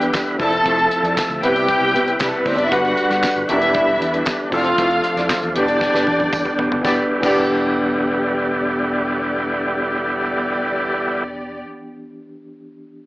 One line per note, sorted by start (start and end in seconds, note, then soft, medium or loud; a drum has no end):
0.00 0.38 D3 medium
0.00 0.37 E3 medium
0.00 0.37 G3 medium
0.00 0.38 B3 medium
0.00 0.14 B3 medium
0.00 0.38 D4 medium
0.00 0.14 D4 medium
0.00 2.69 E4 medium
0.00 0.12 G4 medium
0.00 0.39 G4 medium
0.00 0.14 G4 medium
0.00 0.38 B4 medium
0.00 0.14 B4 medium
0.00 0.12 G5 loud
0.00 closed hi-hat soft
0.13 muted clean electric guitar stroke soft
0.13 kick loud
0.13 snare loud
0.13 clap medium
0.13 tambourine loud
0.27 muted clean electric guitar stroke medium
0.27 closed hi-hat soft
0.38 0.60 F1 medium
0.38 2.70 C3 medium
0.38 1.40 F3 medium
0.38 1.42 F3 medium
0.38 1.42 A3 medium
0.38 1.41 C4 medium
0.38 0.60 C4 medium
0.38 1.41 E4 medium
0.38 0.54 E4 medium
0.38 1.42 A4 medium
0.38 1.16 A4 loud
0.38 0.53 A4 loud
0.38 1.42 A4 medium
0.38 0.54 D5 loud
0.38 1.16 A5 loud
0.38 kick loud
0.38 open hi-hat medium
0.53 muted clean electric guitar stroke soft
0.53 closed hi-hat soft
0.66 0.86 F1 loud
0.66 0.86 C4 medium
0.66 0.80 E4 loud
0.66 0.79 A4 loud
0.66 0.79 C5 loud
0.66 kick loud
0.66 closed hi-hat medium
0.79 muted clean electric guitar stroke soft
0.79 closed hi-hat soft
0.91 muted clean electric guitar stroke soft
0.91 closed hi-hat medium
1.03 1.14 F2 loud
1.03 1.16 C4 medium
1.03 1.16 E4 medium
1.03 1.17 A4 medium
1.03 1.17 D5 medium
1.03 closed hi-hat soft
1.17 kick loud
1.17 snare loud
1.17 clap medium
1.17 tambourine loud
1.30 1.40 D2 loud
1.30 muted clean electric guitar stroke soft
1.30 closed hi-hat soft
1.41 1.73 C2 loud
1.41 2.68 C3 medium
1.41 2.70 G3 medium
1.41 1.55 B3 loud
1.41 2.69 C4 medium
1.41 1.55 E4 loud
1.41 2.69 E4 medium
1.41 1.55 G4 loud
1.41 2.14 G4 loud
1.41 1.55 B4 loud
1.41 4.50 B4 medium
1.41 2.70 B4 medium
1.41 2.14 G5 loud
1.41 closed hi-hat medium
1.55 1.67 B3 medium
1.55 1.68 E4 medium
1.55 1.68 G4 medium
1.55 1.69 D5 medium
1.55 closed hi-hat soft
1.69 kick loud
1.69 closed hi-hat medium
1.81 1.95 C2 medium
1.81 1.93 B3 medium
1.81 1.93 E4 medium
1.81 1.94 G4 medium
1.81 1.94 B4 medium
1.94 2.14 C3 medium
1.94 2.10 B3 medium
1.94 2.06 E4 medium
1.94 2.06 G4 medium
1.94 2.05 B4 medium
1.94 closed hi-hat medium
2.06 muted clean electric guitar stroke soft
2.06 closed hi-hat soft
2.19 2.31 C3 loud
2.19 2.29 G3 medium
2.19 2.29 G4 medium
2.19 muted clean electric guitar stroke soft
2.19 kick loud
2.19 snare loud
2.19 clap medium
2.19 tambourine medium
2.30 2.38 A3 medium
2.30 2.38 A4 medium
2.30 muted clean electric guitar stroke soft
2.38 2.46 B3 medium
2.38 2.47 B4 medium
2.44 2.56 D2 medium
2.44 2.66 B3 medium
2.44 2.55 C4 medium
2.44 2.57 E4 loud
2.44 2.57 G4 loud
2.44 2.55 C5 medium
2.44 2.57 D5 loud
2.44 kick loud
2.44 open hi-hat medium
2.55 2.69 F#1 loud
2.55 2.64 D4 medium
2.55 2.64 D5 loud
2.55 muted clean electric guitar stroke soft
2.55 closed hi-hat soft
2.63 2.72 E4 loud
2.63 2.72 E5 loud
2.71 2.92 G1 loud
2.71 4.50 D3 medium
2.71 4.50 G3 medium
2.71 3.49 G3 medium
2.71 2.92 B3 medium
2.71 2.83 D4 loud
2.71 3.48 D4 medium
2.71 3.48 F#4 medium
2.71 2.83 F#4 medium
2.71 3.23 F#4 medium
2.71 3.49 F#4 medium
2.71 2.82 B4 loud
2.71 3.50 B4 medium
2.71 3.22 F#5 loud
2.71 kick loud
2.71 closed hi-hat loud
2.84 muted clean electric guitar stroke soft
2.84 closed hi-hat soft
2.97 muted clean electric guitar stroke soft
2.97 closed hi-hat medium
3.10 3.20 G2 loud
3.10 3.22 B3 soft
3.10 3.22 D4 medium
3.10 3.22 F#4 medium
3.10 3.23 B4 medium
3.10 snare soft
3.10 closed hi-hat soft
3.23 muted clean electric guitar stroke soft
3.23 kick medium
3.23 snare loud
3.23 clap medium
3.23 tambourine medium
3.36 3.46 G1 medium
3.36 muted clean electric guitar stroke soft
3.36 closed hi-hat soft
3.47 3.80 E1 loud
3.47 4.49 E3 medium
3.47 3.61 G3 loud
3.47 4.50 B3 medium
3.47 3.61 D4 loud
3.47 4.50 D4 medium
3.47 6.82 D4 medium
3.47 3.60 E4 loud
3.47 4.25 E4 loud
3.47 4.51 G4 medium
3.47 3.60 B4 loud
3.47 4.25 E5 loud
3.47 closed hi-hat medium
3.61 3.72 G3 medium
3.61 3.73 D4 medium
3.61 3.74 E4 medium
3.61 3.74 B4 medium
3.61 closed hi-hat soft
3.74 3.95 G3 medium
3.74 3.86 D4 medium
3.74 3.86 E4 medium
3.74 3.86 D5 loud
3.74 kick loud
3.74 closed hi-hat medium
3.86 3.98 E1 loud
3.86 muted clean electric guitar stroke soft
4.00 4.21 E2 loud
4.00 muted clean electric guitar stroke soft
4.00 closed hi-hat medium
4.13 4.25 G3 soft
4.13 4.26 D4 medium
4.13 4.26 E4 medium
4.13 4.26 B4 medium
4.13 closed hi-hat soft
4.26 kick loud
4.26 snare loud
4.26 clap medium
4.26 tambourine medium
4.40 muted clean electric guitar stroke soft
4.51 4.73 F1 loud
4.51 5.55 C3 medium
4.51 5.53 F3 medium
4.51 5.55 F3 medium
4.51 5.55 A3 medium
4.51 5.53 C4 medium
4.51 4.73 C4 medium
4.51 4.65 E4 medium
4.51 5.54 F4 medium
4.51 5.55 F4 medium
4.51 5.29 F4 loud
4.51 4.65 A4 medium
4.51 5.54 A4 medium
4.51 4.65 D5 medium
4.51 5.29 F5 loud
4.51 kick loud
4.51 open hi-hat medium
4.65 muted clean electric guitar stroke soft
4.65 closed hi-hat medium
4.78 4.99 F1 loud
4.78 4.98 C4 medium
4.78 4.91 E4 loud
4.78 4.91 A4 loud
4.78 4.90 C5 loud
4.78 kick loud
4.78 closed hi-hat loud
4.91 muted clean electric guitar stroke medium
4.91 closed hi-hat soft
5.04 muted clean electric guitar stroke soft
5.04 closed hi-hat medium
5.17 5.27 F2 loud
5.17 5.28 C4 medium
5.17 5.29 E4 medium
5.17 5.29 A4 medium
5.17 5.30 D5 medium
5.17 snare soft
5.17 closed hi-hat soft
5.29 muted clean electric guitar stroke medium
5.29 kick loud
5.29 snare medium
5.29 clap medium
5.29 tambourine medium
5.42 5.57 E2 loud
5.42 muted clean electric guitar stroke medium
5.42 closed hi-hat soft
5.54 5.86 E1 loud
5.54 6.83 D3 medium
5.54 6.80 E3 medium
5.54 6.83 G3 medium
5.54 5.68 B3 medium
5.54 6.82 B3 medium
5.54 6.83 B3 medium
5.54 5.68 D4 medium
5.54 6.57 D4 loud
5.54 6.82 D4 medium
5.54 5.67 G4 medium
5.54 6.83 G4 medium
5.54 5.67 B4 loud
5.54 6.57 D5 loud
5.54 closed hi-hat medium
5.68 5.79 B3 medium
5.68 5.80 D4 medium
5.68 5.81 D5 medium
5.68 closed hi-hat soft
5.80 muted clean electric guitar stroke soft
5.80 kick loud
5.80 snare medium
5.93 6.04 E1 medium
5.93 6.05 B3 medium
5.93 6.05 D4 medium
5.93 6.06 G4 medium
5.93 6.06 B4 medium
5.93 snare medium
6.07 6.28 E2 medium
6.07 high tom medium
6.19 muted clean electric guitar stroke medium
6.19 high tom medium
6.32 6.43 E2 loud
6.32 muted clean electric guitar stroke medium
6.32 kick loud
6.32 mid tom medium
6.32 tambourine medium
6.45 muted clean electric guitar stroke soft
6.45 mid tom medium
6.58 6.69 E1 medium
6.58 6.79 B3 medium
6.58 6.71 D4 medium
6.58 6.71 G4 medium
6.58 6.71 D5 loud
6.58 floor tom loud
6.71 6.82 F#1 loud
6.71 muted clean electric guitar stroke soft
6.71 floor tom loud
6.81 6.99 E1 loud
6.81 11.23 D3 medium
6.81 6.97 E3 medium
6.81 11.23 G3 medium
6.81 7.21 B3 medium
6.81 6.98 B3 medium
6.81 11.24 B3 medium
6.81 7.23 D4 medium
6.81 6.99 D4 medium
6.81 11.24 E4 medium
6.81 11.24 G4 medium
6.81 6.99 G4 medium
6.81 6.99 D5 loud
6.81 kick loud
6.81 snare loud
6.81 tambourine medium
6.86 6.99 B3 medium
6.86 7.25 G4 medium
6.86 7.00 G4 loud
6.86 7.26 B4 loud
7.20 11.62 E1 loud
7.20 11.59 E3 medium
7.20 11.65 B3 medium
7.20 11.61 B3 medium
7.20 11.63 B3 medium
7.20 11.67 D4 medium
7.20 11.63 G4 medium
7.20 11.63 D5 medium
7.20 kick loud
7.20 crash medium
7.20 tambourine medium
7.24 11.63 D4 medium
7.24 11.68 G4 loud
7.24 11.65 G4 medium
7.24 11.69 B4 loud